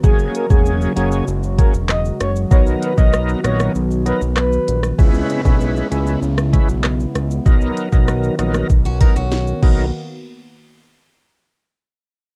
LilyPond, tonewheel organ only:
\new Staff \with { instrumentName = "Tonewheel organ" } { \time 4/4 \key b \major \tempo 4 = 97 <fis ais cis' gis'>8. <fis ais cis' gis'>8. <fis ais cis' gis'>8 r8 <fis ais cis' gis'>16 r4 r16 | <fis b dis' ais'>8. <fis b dis' ais'>8. <fis b dis' ais'>8 r8 <fis b dis' ais'>16 r4 r16 | <gis cis' e' b'>8. <gis cis' e' b'>8. <gis cis' e' b'>8 r8 <gis cis' e' b'>16 r4 r16 | <fis b dis' ais'>8. <fis b dis' ais'>8. <fis b dis' ais'>8 r8 <fis b dis' ais'>16 r8. <fis b dis' ais'>8 |
r1 | }